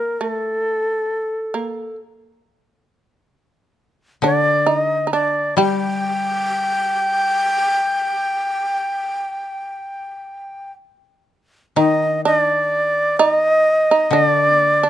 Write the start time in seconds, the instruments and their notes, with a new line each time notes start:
Already playing: koto D#3, shamisen A#3, shakuhachi A#4
0.20 shamisen A3, shakuhachi A4
1.54 shamisen A#3
4.22 koto D3, shamisen D4, shakuhachi D5
4.66 shamisen D#4, shakuhachi D#5
5.07 shamisen D#4
5.13 shamisen D4, shakuhachi D5
5.57 koto G3, shamisen G4, shakuhachi G5
11.76 koto D#3, shamisen D#4, shakuhachi D#5
12.03 shamisen D4
12.25 shamisen D4, shakuhachi D5
13.17 shamisen D#4, shakuhachi D5
13.32 shakuhachi D#5
13.91 shamisen D#4
14.11 koto D3, shamisen D4, shakuhachi D5
14.57 shamisen A#3
14.83 shamisen D4